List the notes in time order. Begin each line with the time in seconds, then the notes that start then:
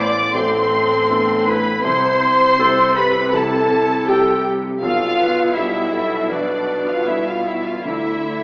Already playing: A1 A2 B3 E4 A4 D5
0.00 D5 D6
0.35 A1 A2 C4 A4 C6
1.09 B3 D4 E4 A4
1.46 E4 B4 B5
1.83 C2 C3 C5 C6
2.59 G3 E4 G4 A4
2.96 G4 B4 B5
3.33 C2 C3 E4 A4 A5
4.07 G3 E4 G4 A4 G5
4.46 G4
4.81 B1 B2 F4 A4 F5
5.19 B4
5.55 G3 D4 E4 G4 A4 E5
5.93 A4
6.30 B1 B2 D4 B4 D5
6.87 F4 F5
7.06 G3 D4 E4 A4 E5
7.27 F4 F5
7.46 E4 E5
7.65 F4 F5
7.84 D2 D3 E4 A4 E5